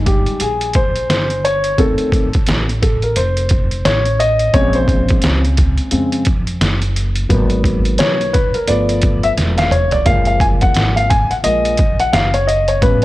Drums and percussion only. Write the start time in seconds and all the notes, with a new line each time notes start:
0.06 kick, closed hi-hat
0.26 closed hi-hat
0.40 closed hi-hat
0.61 closed hi-hat
0.74 kick, closed hi-hat
0.96 closed hi-hat
1.10 snare, closed hi-hat
1.30 closed hi-hat
1.45 closed hi-hat
1.64 closed hi-hat
1.78 kick, closed hi-hat
1.98 closed hi-hat
2.12 kick, closed hi-hat
2.33 kick, closed hi-hat
2.46 snare, closed hi-hat
2.69 closed hi-hat
2.83 kick, closed hi-hat
3.02 closed hi-hat
3.16 closed hi-hat
3.37 closed hi-hat
3.49 kick, closed hi-hat
3.71 closed hi-hat
3.85 snare, closed hi-hat
4.05 closed hi-hat
4.20 closed hi-hat
4.39 closed hi-hat
4.54 kick, closed hi-hat
4.73 closed hi-hat
4.88 kick, closed hi-hat
5.08 kick, closed hi-hat
5.22 snare, closed hi-hat
5.45 closed hi-hat
5.57 kick, closed hi-hat
5.78 closed hi-hat
5.91 closed hi-hat
6.12 closed hi-hat
6.25 kick, closed hi-hat
6.47 closed hi-hat
6.61 snare, closed hi-hat
6.82 closed hi-hat
6.96 closed hi-hat
7.16 closed hi-hat
7.30 kick, closed hi-hat
7.50 closed hi-hat
7.64 kick, closed hi-hat
7.85 closed hi-hat
7.98 snare, closed hi-hat
8.21 closed hi-hat
8.34 kick, closed hi-hat
8.54 closed hi-hat
8.67 closed hi-hat
8.89 closed hi-hat
9.01 kick, closed hi-hat
9.23 closed hi-hat
9.37 snare, closed hi-hat
9.58 snare, closed hi-hat
9.71 closed hi-hat, mid tom
9.91 closed hi-hat, floor tom
10.06 kick, closed hi-hat
10.25 closed hi-hat
10.40 kick, closed hi-hat
10.61 kick, closed hi-hat
10.74 snare, closed hi-hat
10.97 closed hi-hat
11.10 kick, closed hi-hat
11.31 closed hi-hat
11.44 closed hi-hat
11.65 closed hi-hat
11.77 kick, closed hi-hat
12.00 closed hi-hat
12.13 snare, closed hi-hat
12.34 closed hi-hat
12.49 closed hi-hat
12.68 closed hi-hat
12.82 kick, closed hi-hat